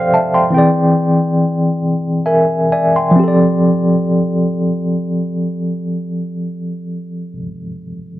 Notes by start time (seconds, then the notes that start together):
Already playing: F3 C4 G4 A4 C5 D5 F5 G5
0.14 E5 A5
0.34 G5 C6
0.50 E3 C4
0.54 G#4 D5 G5
2.26 A#4 E5 G#5
2.72 D5 E5 G#5
2.96 G5 C6
3.11 F3
3.16 C4 G4
3.24 A4
3.28 D5